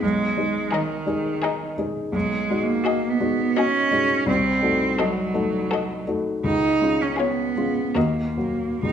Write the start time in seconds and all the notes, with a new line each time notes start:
0.03 B1 G#3
0.37 G#3 D#4 G#4
0.71 D#3 D#4 G#4 D#5
1.06 G#3 D#4 G#4
1.42 D#4 G#4 D#5
1.78 G#3 D#4 G#4
2.12 B1 G#3
2.50 G#3 D#4 F#4
2.62 A#3
2.84 F#4 G#4 D#5
3.10 B3
3.20 G#3 D#4 F#4
3.56 C#4 F#4 G#4 D#5
3.91 G#3 D#4 F#4
4.26 C2 C4
4.62 A3 D#4 F#4
4.98 F#3 F#4 A4 D#5
5.34 A3 D#4 F#4
5.71 F#4 A4 D#5
6.07 A3 D#4 F#4
6.44 C#2 D#4
6.81 G#3 C#4 F4
7.02 C#4
7.16 B3 F4 G#4 C#5
7.57 G#3 C#4 F4
7.94 D#2 A#3 F#4 A#4 D#5
8.37 F#3 A#3 F#4
8.83 C#2 D#4